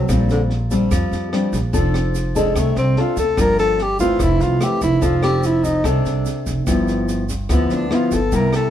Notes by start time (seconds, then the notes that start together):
Already playing: F#3
0.08 A#1 A#2 G3 C4 D4, kick, cross-stick, snare, shaker
0.13 F3
0.29 D3, snare, shaker
0.50 snare
0.70 G3 C4 D4, kick, snare, shaker
0.91 F2 F3, kick, cross-stick, snare, shaker
1.12 F2, snare, shaker
1.32 G3 C4 D4, cross-stick, snare
1.53 A#1, kick, snare, shaker
1.73 F1 F3 C4 D4 A4, kick, snare, shaker
1.94 cross-stick, snare, shaker
2.15 snare, shaker
2.35 G#3 C4 D4 A4, kick, snare, shaker
2.55 C2 C3 A3, kick, cross-stick, snare, shaker
2.76 C2 C4, snare, shaker
2.96 C4 D4 F4 A4, snare
3.17 D2 A4, kick, snare, shaker
3.37 G1 G2 F3 A#3 D4 A#4, kick, cross-stick, snare, shaker
3.58 A4, snare, shaker
3.79 G4, snare
3.99 E3 A3 C4 F4, kick, snare, shaker
4.19 F1 F2 E4, kick, cross-stick, snare, shaker
4.40 C2 F4, snare, shaker
4.61 E3 A3 C4 G4, cross-stick, snare, shaker
4.81 F1 E4, kick, snare, shaker
5.01 F1 F3 C4 D4 F4 A4, kick, snare, shaker
5.22 C4 D4 G4 A4, cross-stick, snare, shaker
5.43 E4, snare, shaker
5.64 D#4, kick, snare, shaker
5.84 C2 C3 C4 D4 A4, kick, cross-stick, snare, shaker
6.05 C2, snare, shaker
6.26 snare, shaker
6.46 F1, kick, snare, shaker
6.67 G1 G2 F3 B3 E4, kick, cross-stick, snare, shaker
6.88 snare, shaker
7.08 snare, shaker
7.29 kick, snare, shaker
7.49 D2 D3 F3 B3 E4, kick, cross-stick, snare, shaker
7.70 D2 D4, snare, shaker
7.90 F3 B3 E4, cross-stick, snare
7.94 F4
8.11 G1 A4, kick, snare, shaker
8.32 C2 C3 G3 A#3 E4 A#4, kick, snare, shaker
8.53 A4, cross-stick, snare, shaker